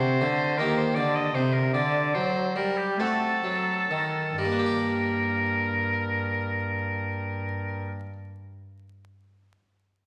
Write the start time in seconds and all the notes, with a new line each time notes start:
Already playing: C3 A3 D4 F#4 C5
0.21 D3
0.58 D#3 A#3 G4 A#4
0.77 C5
0.95 D3 D5
1.15 D#5
1.34 C3 C5
1.53 A#4
1.73 D3 D5
2.14 F#3 C5
2.56 G3 A#4
2.77 G4
2.99 A3 C4 F#4 A4
3.43 F#3
3.90 D#3
4.38 G2 G3 A#4
4.45 A#3
4.52 D4
4.59 G4
4.66 D5